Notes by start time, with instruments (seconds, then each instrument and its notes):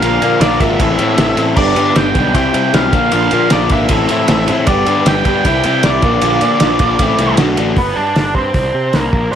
0.02 picked electric bass A#1, clean electric guitar A#2 D3 F3 A#3 D4 A#4, overdriven electric guitar F4, lead electric guitar F5, ride
0.22 clean electric guitar A#2 D3 F3 A#3 D4 A#4, picked electric bass A#2, overdriven electric guitar F4, ride
0.41 picked electric bass A#1, clean electric guitar A#2 D3 F3 A#3 D4 A#4, overdriven electric guitar F4, lead electric guitar D5, snare, ride
0.60 picked electric bass G#1, clean electric guitar A#2 D3 F3 A#3 D4 A#4, overdriven electric guitar F4, lead electric guitar E5, kick, ride
0.79 picked electric bass A1, clean electric guitar A2 E3 C4 E4 A4, overdriven electric guitar A3, kick, ride
0.98 clean electric guitar A2 E3 C4 E4 A4, picked electric bass A2, overdriven electric guitar A3, ride
1.18 picked electric bass A1, clean electric guitar A2 E3 C4 E4 A4, overdriven electric guitar A3, snare, ride
1.37 picked electric bass A1, clean electric guitar A2 E3 C4 E4 A4, overdriven electric guitar A3, ride
1.56 picked electric bass G1, clean electric guitar G2 D3 G3 B3 D4 G4, lead electric guitar D5, kick, crash
1.75 picked electric bass G2, clean electric guitar G2 D3 G3 B3 D4 G4, ride
1.95 picked electric bass G1, clean electric guitar G2 D3 G3 B3 D4 G4, lead electric guitar G5, snare, ride
2.15 picked electric bass B1, clean electric guitar G2 D3 G3 B3 D4 G4, kick, ride
2.34 picked electric bass C2, clean electric guitar C3 G3 C4 E4 G4, lead electric guitar G5, kick, ride
2.54 clean electric guitar C3 G3 C4 E4 G4, picked electric bass C3, ride
2.73 picked electric bass B1, clean electric guitar C3 G3 C4 E4 G4, lead electric guitar F5, snare, ride
2.92 picked electric bass A#1, clean electric guitar A#2 D3 F3 A#3 D4 A#4, overdriven electric guitar F4, kick, ride
3.12 picked electric bass A#1, clean electric guitar A#2 D3 F3 A#3 D4 A#4, overdriven electric guitar F4, lead electric guitar F5, ride
3.31 clean electric guitar A#2 D3 F3 A#3 D4 A#4, picked electric bass A#2, overdriven electric guitar F4, ride
3.50 picked electric bass A#1, clean electric guitar A#2 D3 F3 A#3 D4 A#4, overdriven electric guitar F4, lead electric guitar D5, snare, ride
3.69 picked electric bass G#1, clean electric guitar A#2 D3 F3 A#3 D4 A#4, lead electric guitar E5, kick, ride
3.74 overdriven electric guitar F4
3.89 picked electric bass A1, clean electric guitar A2 E3 C4 E4 A4, overdriven electric guitar A3, kick, ride
4.08 clean electric guitar A2 E3 C4 E4 A4, picked electric bass A2, overdriven electric guitar A3, ride
4.28 picked electric bass A1, clean electric guitar A2 E3 C4 E4 A4, overdriven electric guitar A3, snare, ride
4.48 clean electric guitar A2 E3 C4 E4 A4, picked electric bass A2, overdriven electric guitar A3, ride
4.67 picked electric bass G1, clean electric guitar G2 D3 G3 B3 D4 G4, lead electric guitar D5, kick, ride
4.86 clean electric guitar G2 D3 G3 B3 D4 G4, picked electric bass G2, ride
5.06 picked electric bass G1, clean electric guitar G2 D3 G3 B3 D4 G4, lead electric guitar G5, snare, ride
5.25 clean electric guitar G2 D3 G3 B3 D4 G4, picked electric bass G2, kick, ride
5.45 picked electric bass C2, clean electric guitar C3 E3 G3 C4 E4, lead electric guitar G5, kick, ride
5.64 clean electric guitar C3 E3 G3 C4 E4, picked electric bass C3, ride
5.83 picked electric bass C2, clean electric guitar C3 E3 G3 C4 E4, lead electric guitar D5, snare, ride
6.02 picked electric bass A#1, clean electric guitar A#2 D3 A#3 D4 F4, overdriven electric guitar F3, kick, ride
6.21 picked electric bass A#1, clean electric guitar A#2 D3 A#3 D4 F4, overdriven electric guitar F3, ride
6.41 clean electric guitar A#2 D3 A#3 D4 F4, picked electric bass A#2, overdriven electric guitar F3, ride
6.60 picked electric bass A#1, clean electric guitar A#2 D3 A#3 D4 F4, overdriven electric guitar F3, snare, ride
6.79 picked electric bass A#1, clean electric guitar A#2 D3 A#3 D4 F4, overdriven electric guitar F3, kick, ride
6.99 picked electric bass A1, clean electric guitar A2 E3 A3 C4 E4, kick, ride
7.18 picked electric bass C2, clean electric guitar A2 E3 A3 C4 E4, ride
7.37 picked electric bass B1, clean electric guitar D3 A3 D4 F#4, snare, ride
7.57 picked electric bass A1, clean electric guitar D3 A3 D4 F#4, ride
7.76 picked electric bass G1, lead electric guitar B3, kick, open hi-hat
7.96 picked electric bass G2, lead electric guitar D4
8.16 picked electric bass G1, snare, open hi-hat
8.35 picked electric bass G2, lead electric guitar C4, kick
8.54 picked electric bass C2, kick, open hi-hat
8.74 picked electric bass C3
8.93 picked electric bass C2, lead electric guitar A#3, snare, open hi-hat
9.13 picked electric bass A#1, kick
9.31 lead electric guitar D4